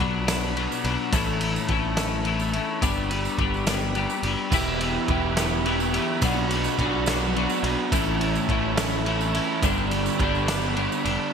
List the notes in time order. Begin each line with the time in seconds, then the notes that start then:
Already playing: F#4 B4 D5 B5
0.00 B1 B2 F#3 B3 D4, kick, ride
0.27 F#3 B3 D4, snare, ride, tambourine
0.56 B2 F#3 B3 D4, ride
0.72 tambourine
0.84 B1 F#3 B3 D4, ride
1.12 A1 A2 E3 A3 C#4 E4 A4 C#5 A5, kick, ride, tambourine
1.40 A3 C#4 E4, ride
1.56 tambourine
1.68 A1 E3 A3 C#4 E4, kick, ride
1.97 A3 C#4 E4, snare, ride, tambourine
2.25 E3 A3 C#4 E4, ride
2.39 tambourine
2.53 A3 C#4 E4, ride
2.81 G1 G3 B3 D4 G4 B4 D5 B5, kick, ride, tambourine
2.97 tambourine
3.10 B3 D4 G4, ride
3.25 tambourine
3.38 G1 G3 B3 D4 G4, kick, ride
3.54 tambourine
3.67 B3 D4 G4, snare, ride, tambourine
3.82 tambourine
3.95 G3 B3 D4 G4, ride, tambourine
4.10 tambourine
4.23 F#1 B3 D4 G4, ride
4.52 E1 E3 B3 E4 G4 B4 E5, kick, crash, tambourine
4.80 B3 E4 G4, ride
5.08 E1 E3 B3 E4 G4, kick, ride
5.37 B3 E4 G4, snare, ride, tambourine
5.65 E3 B3 E4 G4, ride
5.80 tambourine
5.93 B3 E4 G4, ride
6.22 B1 B2 F#3 B3 D4 F#4 D5 B5, kick, ride, tambourine
6.50 B3 D4 F#4, ride
6.64 tambourine
6.79 B1 F#3 B3 D4 F#4, kick, ride
7.06 B3 D4 F#4, snare, ride, tambourine
7.36 F#3 B3 D4 F#4, ride
7.49 tambourine
7.63 B1 B3 D4 F#4, ride
7.92 A1 A2 E3 A3 C#4 E4 A4 C#5 A5, kick, ride, tambourine
8.21 A3 C#4 E4, ride
8.35 tambourine
8.49 A1 E3 A3 C#4 E4, kick, ride
8.77 A3 C#4 E4, snare, ride, tambourine
9.06 E3 A3 C#4 E4, ride
9.21 tambourine
9.34 A3 C#4 E4, ride
9.61 G1 G2 D3 G3 B3 D4 G4 B4 D5 B5, kick, ride, tambourine
9.77 tambourine
9.91 G3 B3 D4, ride
10.06 tambourine
10.19 G1 D3 G3 B3 D4, kick, ride
10.35 tambourine
10.48 G3 B3 D4, snare, ride, tambourine
10.64 tambourine
10.76 D3 G3 B3 D4, ride, tambourine
10.92 tambourine
11.05 F1 G3 B3 D4, ride